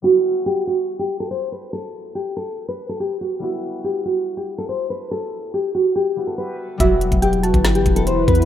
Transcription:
<<
  \new Staff \with { instrumentName = "Synth pluck" } { \time 4/4 \key e \minor \tempo 4 = 142 r1 | r1 | r1 | r1 |
e''4 g''8 a''8 r2 | }
  \new Staff \with { instrumentName = "Nylon-string guitar" } { \time 4/4 \key e \minor fis'4 g'8 fis'8. g'8 a'16 c''8 b'8 | a'4 g'8 a'8. b'8 a'16 g'8 fis'8 | fis'4 g'8 fis'8. g'8 a'16 c''8 b'8 | a'4 g'8 fis'8 g'8. a'16 b'8 r8 |
fis'4 g'8 fis'8. g'8 a'16 c''8 b'8 | }
  \new Staff \with { instrumentName = "Ambient pad" } { \time 4/4 \key e \minor r1 | r1 | r1 | r1 |
<e b e' b'>1 | }
  \new Staff \with { instrumentName = "Harp" } { \time 4/4 \key e \minor <g b e' fis'>1~ | <g b e' fis'>1 | <g b e' fis'>1~ | <g b e' fis'>2~ <g b e' fis'>8 <g b e' fis'>4. |
<fis g b e'>1 | }
  \new Staff \with { instrumentName = "808-style bass" } { \clef bass \time 4/4 \key e \minor r1 | r1 | r1 | r1 |
e,,8. e,,4 g,,8. e,,4 e,8 | }
  \new DrumStaff \with { instrumentName = "Drums" } \drummode { \time 4/4 r4 r4 r4 r4 | r4 r4 r4 r4 | r4 r4 r4 r4 | r4 r4 r4 r4 |
<hh bd>8 hh16 <hh bd>16 hh16 hh16 hh16 <hh bd>16 <hh sn>16 hh16 <hh bd>16 hh16 \tuplet 3/2 { hh16 r16 r16 <hh bd>16 hh16 hh16 } | }
>>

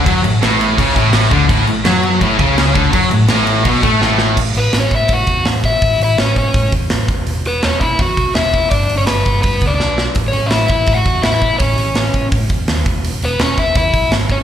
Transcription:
<<
  \new Staff \with { instrumentName = "Overdriven electric guitar" } { \time 4/4 \key a \major \tempo 4 = 166 r1 | r1 | r1 | r8 <b b'>8 <cis' cis''>8 <e' e''>8 <fis' fis''>4 r8 <e' e''>8~ |
<e' e''>8 <e' e''>8 <cis' cis''>8 <cis' cis''>4 r4. | r8 <b b'>8 <cis' cis''>8 <e' e''>8 <fis' fis''>4 <e' e''>4 | <d' d''>8. <cis' cis''>16 <b b'>4 <b b'>8. <d' d''>16 <d' d''>8. r16 | r8 <cis' cis''>8 <e' e''>8 <e' e''>8. <fis' fis''>8. <e' e''>16 <e' e''>8. |
<cis' cis''>2 r2 | r8 <b b'>8 <cis' cis''>8 <e' e''>8 <e' e''>4 r8 <cis' cis''>8 | }
  \new Staff \with { instrumentName = "Distorted electric guitar" } { \clef bass \time 4/4 \key a \major fis8 a,8 a,4 cis8 a,4 d8 | a,8 a,8 fis4 a,8 cis4 d8 | fis8 a,8 a,4 b,8 a8 a,4 | r1 |
r1 | r1 | r1 | r1 |
r1 | r1 | }
  \new Staff \with { instrumentName = "Overdriven electric guitar" } { \clef bass \time 4/4 \key a \major fis8 a,8 a,4 cis8 a,4 d8 | a,8 a,8 fis4 a,8 cis4 d8 | fis8 a,8 a,4 b,8 a8 a,4 | r1 |
r1 | r1 | r1 | r1 |
r1 | r1 | }
  \new Staff \with { instrumentName = "Overdriven electric guitar" } { \clef bass \time 4/4 \key a \major fis8 a,8 a,4 cis8 a,4 d8 | a,8 a,8 fis4 a,8 cis4 d8 | fis8 a,8 a,4 b,8 a8 a,4 | r1 |
r1 | r1 | r1 | r1 |
r1 | r1 | }
  \new Staff \with { instrumentName = "Picked electric bass" } { \clef bass \time 4/4 \key a \major fis,8 a,,8 a,,4 cis,8 a,,4 d,8 | a,,8 a,,8 fis,4 a,,8 cis,4 d,8 | fis,8 a,,8 a,,4 b,,8 a,8 a,,4 | a,,8 a,,8 a,,8 a,,8 a,8 e,8 a,,4 |
a,,8 a,,8 a,,8 a,,8 a,8 e,8 a,,8 e,,8 | e,,8 e,,8 e,,8 e,,8 e,8 b,,8 e,,4 | g,,8 g,,8 g,,8 g,,8 g,8 d,8 b,,4 | a,,8 a,,8 a,,8 a,,8 a,8 e,8 a,,4 |
a,,8 a,,8 a,,8 a,,8 a,8 e,8 dis,8 e,,8 | e,,8 e,,8 e,,8 e,,8 e,8 b,,8 gis,,4 | }
  \new DrumStaff \with { instrumentName = "Drums" } \drummode { \time 4/4 <cymc bd>8 cymc8 <cymc sn>8 cymc8 <cymc bd>8 <cymc bd>8 <cymc sn>8 <cymc bd>8 | <cymc bd>8 cymc8 <cymc sn>8 cymc8 <cymc bd>8 <cymc bd>8 <cymc sn>8 <cymc bd>8 | <cymc bd>8 cymc8 <cymc sn>8 cymc8 <cymc bd>8 <cymc bd>8 sn8 sn8 | <cymc bd>8 hho8 <hho sn>8 <hho bd>8 <hho bd>8 <hho bd>8 <hho sn>8 <hho bd>8 |
<hho bd>8 hho8 <hho sn>8 <hho bd>8 <hho bd>8 <hho bd>8 <hho sn>8 <hho bd>8 | hho8 hho8 <hho sn>8 <hho bd>8 <hho bd>8 <hho bd>8 <hho sn>8 <hho bd>8 | <hho bd>8 hho8 <hho sn>8 <hho bd>8 <hho bd>8 <hho bd>8 sn8 sn8 | <hho bd>8 hho8 <hho sn>8 <hho bd>8 <hho bd>8 <hho bd>8 <hho sn>8 <hho bd>8 |
<hho bd>8 hho8 <hho sn>8 <hho bd>8 <hho bd>8 <hho bd>8 <hho sn>8 <hho bd>8 | hho8 hho8 <hho sn>8 <hho bd>8 <hho bd>8 <hho bd>8 <hho sn>8 <hho bd>8 | }
>>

